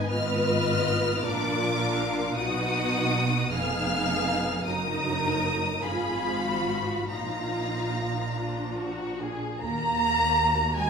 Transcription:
Already playing: violin section G#5
0.10 double bass section G#1, cello section G#2, viola section B3 F4, violin section B4 D#5 F6
0.69 viola section B3
1.24 double bass section A#1, cello section A#2, viola section D4 F4, violin section A#4 D5 D6
1.81 viola section D4, violin section F5
2.36 double bass section B1, cello section B2, viola section B3 D#4, violin section F#4 F#5 D#6
3.50 double bass section F1, cello section F2, viola section B3 D#4, violin section G#4 F5 F6
4.64 double bass section F#1, cello section F#2, viola section F#3 D#4, violin section A#4 A#5 D#6
5.84 double bass section G#1, cello section G#2, viola section F3 F4, violin section G#4 F5 B5
6.46 violin section F#4
7.08 double bass section A#1, cello section A#2, viola section F3 D#4, violin section F4 F5 A#5
8.36 viola section F3 D4, violin section F4
8.78 violin section F#4
9.21 violin section G#4
9.60 double bass section D#2, cello section A#3, violin section F#4 A#5
10.78 cello section G#3, viola section F#4, violin section G#5

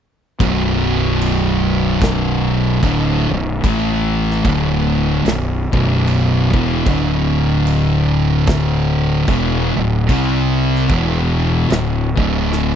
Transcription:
0.40 fingered electric bass B0, distorted electric guitar B1 F#2 B2, kick, crash
1.21 crash
2.01 kick, snare, crash
2.82 fingered electric bass D1, distorted electric guitar D2 A2 D3, kick, crash
3.30 fingered electric bass B0, distorted electric guitar B1 F#2
3.63 fingered electric bass A1, distorted electric guitar A2 E3 A3, kick, crash
4.31 snare
4.44 fingered electric bass D1, distorted electric guitar D2 A2 D3, kick, crash
5.24 fingered electric bass B0, distorted electric guitar B1 F#2, snare, crash
5.72 fingered electric bass B0, distorted electric guitar B1 F#2 B2, kick
6.07 crash
6.53 fingered electric bass E1, distorted electric guitar E2 B2 E3, kick
6.86 fingered electric bass D1, distorted electric guitar D2 A2 D3, kick, crash
7.67 crash
8.47 kick, snare, crash
9.28 fingered electric bass E1, distorted electric guitar E2 B2 E3, kick, crash
9.75 fingered electric bass D1, distorted electric guitar D2 A2
10.09 fingered electric bass C2, distorted electric guitar C3 G3 C4, kick, crash
10.76 snare
10.89 fingered electric bass E1, distorted electric guitar E2 B2 E3, kick, crash
11.68 fingered electric bass D1, distorted electric guitar D2 A2, snare, crash
12.15 fingered electric bass D1, distorted electric guitar D2 A2 D3, kick
12.52 snare

